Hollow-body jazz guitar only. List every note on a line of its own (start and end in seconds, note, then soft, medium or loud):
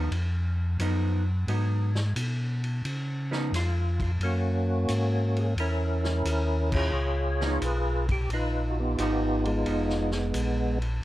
0.80 1.22 F3 medium
0.80 1.23 B3 medium
0.80 1.23 D#4 medium
1.48 1.90 F#3 medium
1.48 1.91 B3 medium
1.48 1.91 D#4 medium
3.31 3.50 F3 medium
3.31 3.51 B3 medium
3.31 3.51 D#4 medium
7.41 7.60 F3 medium
7.41 7.60 B3 medium
7.41 7.61 D#4 medium
8.99 9.41 F3 medium
8.99 9.42 B3 medium
8.99 9.42 D#4 medium
9.66 10.72 F3 soft
9.66 10.73 B3 medium
9.66 10.73 D#4 medium